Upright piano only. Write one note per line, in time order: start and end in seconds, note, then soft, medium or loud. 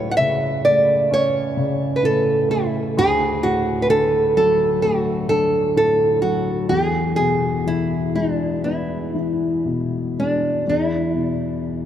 0.00 2.95 C#2 medium
0.00 1.54 A2 medium
0.19 1.55 C#3 soft
0.66 2.48 A3 medium
1.11 2.93 C#4 medium
1.57 2.93 C#3 medium
2.03 2.94 A2 soft
2.49 2.95 A3 medium
2.97 6.67 D2 medium
3.44 5.26 A2 medium
3.90 5.27 D3 soft
4.36 6.19 F#3 medium
4.84 6.68 A3 medium
5.29 6.67 D3 medium
5.75 6.68 A2 soft
6.23 6.69 F#3 medium
6.69 10.62 E2 medium
7.18 9.11 B2 soft
7.66 9.13 E3 soft
8.15 10.13 G#3 soft
8.64 10.62 B3 soft
9.15 10.62 E3 soft
9.65 10.63 B2 soft
10.19 10.65 G#3 soft
10.67 11.85 E2 soft
11.14 11.85 B2 soft